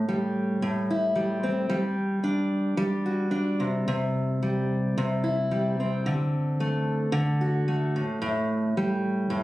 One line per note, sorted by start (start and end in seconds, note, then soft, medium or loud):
0.00 0.61 A2 medium
0.09 1.15 G3 medium
0.62 1.78 A2 medium
0.90 1.78 E4 medium
1.15 1.69 G3 medium
1.43 1.77 C4 medium
1.70 2.77 G3 medium
2.24 3.30 D4 medium
2.77 4.42 G3 medium
3.06 3.67 F#4 medium
3.31 3.66 D4 medium
3.60 3.86 C3 medium
3.88 4.96 C3 medium
4.43 5.50 G3 medium
4.98 6.12 C3 medium
5.24 6.12 E4 medium
5.51 6.12 G3 medium
5.80 7.15 C4 medium
6.06 7.11 D3 medium
6.60 7.67 A3 medium
7.12 8.01 D3 medium
7.41 8.02 F#4 medium
7.68 8.77 A3 medium
7.96 8.20 A2 medium
8.22 9.29 A2 medium
8.77 9.43 G3 medium
9.30 9.43 A2 medium